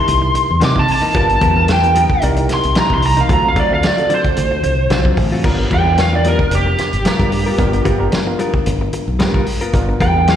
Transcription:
Already playing: reed electric piano D#4 E4 G4 A#4, lead electric guitar C6
0.08 fingered electric bass C2, muted clean electric guitar stroke, closed hi-hat
0.22 muted clean electric guitar stroke
0.35 muted clean electric guitar stroke, closed hi-hat
0.50 fingered electric bass E2
0.60 clean electric guitar C3 E3 A#3 D#4, fingered electric bass C3, snare, closed hi-hat
0.65 lead electric guitar D6
0.75 clean electric guitar C3 E3 A#3 D#4, kick
0.79 lead electric guitar A5
0.87 muted clean electric guitar stroke, open hi-hat
0.92 lead electric guitar A5
1.02 clean electric guitar E3 A#3 D#4
1.14 fingered electric bass G1, clean electric guitar G3 B3 F4 A#4, reed electric piano B3 D4 F4 A#4, lead electric guitar A5, kick, closed hi-hat
1.29 muted clean electric guitar stroke, closed hi-hat
1.41 fingered electric bass E2, clean electric guitar G3 B3 F4 A#4, kick, closed hi-hat
1.55 reed electric piano B3 D4 F4 A#4, muted clean electric guitar stroke
1.68 snare, closed hi-hat
1.73 lead electric guitar G5
1.83 reed electric piano B3 D4 F4 A#4, muted clean electric guitar stroke, closed hi-hat
1.95 clean electric guitar G3 B3 F4 A#4, closed hi-hat
2.10 muted clean electric guitar stroke, kick
2.22 fingered electric bass C2, reed electric piano D#4 E4 G4 A#4, muted clean electric guitar stroke, closed hi-hat
2.36 muted clean electric guitar stroke, closed hi-hat
2.49 muted clean electric guitar stroke, snare, closed hi-hat
2.54 lead electric guitar C6
2.63 fingered electric bass C2, closed hi-hat
2.75 clean electric guitar C3 E3 A#3 D#4, lead electric guitar A#5, snare, closed hi-hat
2.90 fingered electric bass C2, clean electric guitar C3 E3 A#3 D#4, kick
2.95 lead electric guitar C6
3.02 lead electric guitar A#5, muted clean electric guitar stroke, open hi-hat
3.17 clean electric guitar E3 A#3 D#4, lead electric guitar F5, closed hi-hat
3.29 fingered electric bass D2, clean electric guitar D3 F#3 C4 F4, reed electric piano C4 F4 F#4 A4, kick, closed hi-hat
3.33 lead electric guitar A#5
3.44 muted clean electric guitar stroke
3.48 lead electric guitar F5
3.56 fingered electric bass D2, clean electric guitar D3 F#3 C4 F4, kick, closed hi-hat
3.60 lead electric guitar D5
3.71 reed electric piano C4 F4 F#4 A4, lead electric guitar F5, muted clean electric guitar stroke
3.83 lead electric guitar D5, snare, closed hi-hat
3.97 reed electric piano C4 F4 F#4 A4, muted clean electric guitar stroke, closed hi-hat
4.10 clean electric guitar D3 F#3 C4 F4, closed hi-hat
4.15 lead electric guitar C5
4.24 muted clean electric guitar stroke, kick, closed hi-hat
4.36 fingered electric bass D2, muted clean electric guitar stroke, closed hi-hat
4.51 muted clean electric guitar stroke
4.63 fingered electric bass C2, muted clean electric guitar stroke, closed hi-hat
4.90 fingered electric bass B1, clean electric guitar D3 F#3 C4 F4, snare, closed hi-hat
5.05 clean electric guitar D3 F#3 C4 F4, kick
5.17 fingered electric bass A1, muted clean electric guitar stroke, kick, open hi-hat
5.32 clean electric guitar F#3 C4 F4
5.43 fingered electric bass G1, clean electric guitar G3 B3 F4 A#4, reed electric piano B3 D4 F4 A#4, kick, crash
5.59 muted clean electric guitar stroke
5.71 fingered electric bass E2, clean electric guitar G3 B3 F4 A#4, lead electric guitar G5, kick, closed hi-hat
5.85 reed electric piano B3 D4 F4 A#4, muted clean electric guitar stroke
5.98 lead electric guitar F5, snare, closed hi-hat
6.12 reed electric piano B3 D4 F4 A#4, lead electric guitar D5, muted clean electric guitar stroke
6.24 clean electric guitar G3 B3 F4 A#4, closed hi-hat
6.29 lead electric guitar A#4
6.39 muted clean electric guitar stroke, kick
6.51 fingered electric bass F1, lead electric guitar G4, muted clean electric guitar stroke, closed hi-hat
6.67 muted clean electric guitar stroke
6.78 muted clean electric guitar stroke, snare, closed hi-hat
6.93 fingered electric bass G1, closed hi-hat
7.05 clean electric guitar G3 B3 F4 A#4, snare, closed hi-hat
7.19 fingered electric bass G2, clean electric guitar G3 B3 F4 A#4, kick, closed hi-hat
7.32 muted clean electric guitar stroke, open hi-hat
7.46 clean electric guitar B3 F4 A#4
7.58 fingered electric bass G1, reed electric piano B3 D4 F4 A#4, kick, closed hi-hat
7.73 muted clean electric guitar stroke, closed hi-hat
7.85 fingered electric bass G1, clean electric guitar G3 B3 F4 A#4, kick, closed hi-hat
7.98 reed electric piano B3 D4 F4 A#4, muted clean electric guitar stroke
8.12 snare, closed hi-hat
8.26 reed electric piano B3 D4 F4 A#4, muted clean electric guitar stroke
8.39 clean electric guitar G3 B3 F4 A#4, closed hi-hat
8.54 muted clean electric guitar stroke, kick
8.66 fingered electric bass G1, muted clean electric guitar stroke, closed hi-hat
8.81 muted clean electric guitar stroke
8.93 muted clean electric guitar stroke, closed hi-hat
9.08 fingered electric bass B1
9.19 fingered electric bass G2, clean electric guitar G3 B3 F4 A#4, snare, closed hi-hat
9.34 clean electric guitar G3 B3 F4 A#4, kick
9.46 muted clean electric guitar stroke, open hi-hat
9.61 clean electric guitar B3 F4 A#4, closed hi-hat
9.73 fingered electric bass G1, reed electric piano B3 D4 F4 A#4, kick, closed hi-hat
9.89 muted clean electric guitar stroke
10.00 fingered electric bass E2, clean electric guitar G3 B3 F4 A#4, lead electric guitar G5, kick, closed hi-hat
10.15 reed electric piano B3 D4 F4 A#4, muted clean electric guitar stroke
10.28 lead electric guitar F5, snare, closed hi-hat

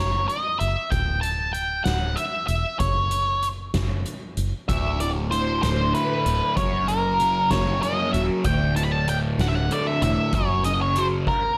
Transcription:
Already playing: fingered electric bass F#1, lead electric guitar C#5
0.28 lead electric guitar D#5, closed hi-hat
0.59 fingered electric bass F#1, lead electric guitar E5, closed hi-hat
0.90 fingered electric bass D1, lead electric guitar G5, kick, closed hi-hat
1.21 lead electric guitar A5, closed hi-hat
1.53 lead electric guitar G5, closed hi-hat
1.84 fingered electric bass D1, lead electric guitar F#5, snare, closed hi-hat
2.16 lead electric guitar E5, closed hi-hat
2.47 fingered electric bass E1, lead electric guitar E5, closed hi-hat
2.79 fingered electric bass F#1, lead electric guitar C#5, kick, closed hi-hat
3.11 closed hi-hat
3.42 closed hi-hat
3.74 fingered electric bass F#1, kick, snare, closed hi-hat
4.05 closed hi-hat
4.37 fingered electric bass F#1, closed hi-hat
4.69 fingered electric bass D1, distorted electric guitar D2, lead electric guitar E5, kick, closed hi-hat
5.00 distorted electric guitar A2, lead electric guitar D5, closed hi-hat
5.31 distorted electric guitar A2, lead electric guitar C5, closed hi-hat
5.63 fingered electric bass D1, distorted electric guitar D3, lead electric guitar C5, snare, closed hi-hat
5.94 distorted electric guitar A3, lead electric guitar B4, closed hi-hat
6.26 fingered electric bass D1, distorted electric guitar A2, closed hi-hat
6.56 fingered electric bass F#1, distorted electric guitar F#2, lead electric guitar C#5, kick, closed hi-hat
6.88 distorted electric guitar C#3, lead electric guitar A#4, closed hi-hat
7.19 distorted electric guitar F#3, closed hi-hat
7.50 fingered electric bass F#1, distorted electric guitar A#3, lead electric guitar C#5, kick, snare, closed hi-hat
7.82 distorted electric guitar C#4, lead electric guitar D#5, closed hi-hat
8.13 fingered electric bass D#1, distorted electric guitar F#3, lead electric guitar E5, closed hi-hat
8.44 fingered electric bass D1, distorted electric guitar D2, lead electric guitar G5, kick, closed hi-hat
8.76 distorted electric guitar A2, lead electric guitar A5, closed hi-hat
8.83 lead electric guitar B5
8.91 lead electric guitar A5
9.08 distorted electric guitar A2, lead electric guitar G5, closed hi-hat
9.39 fingered electric bass D1, distorted electric guitar D3, lead electric guitar F#5, snare, closed hi-hat
9.48 lead electric guitar E5
9.55 lead electric guitar F#5
9.71 distorted electric guitar A3, lead electric guitar D5, closed hi-hat
9.87 lead electric guitar E5
10.02 fingered electric bass E1, distorted electric guitar A2, lead electric guitar E5, closed hi-hat
10.33 fingered electric bass F#1, distorted electric guitar F#2, lead electric guitar C#5, kick, closed hi-hat
10.64 distorted electric guitar C#3, lead electric guitar D#5, closed hi-hat
10.81 lead electric guitar C#5
10.95 distorted electric guitar F#3, lead electric guitar C5, closed hi-hat
11.26 lead electric guitar A#4, kick, crash

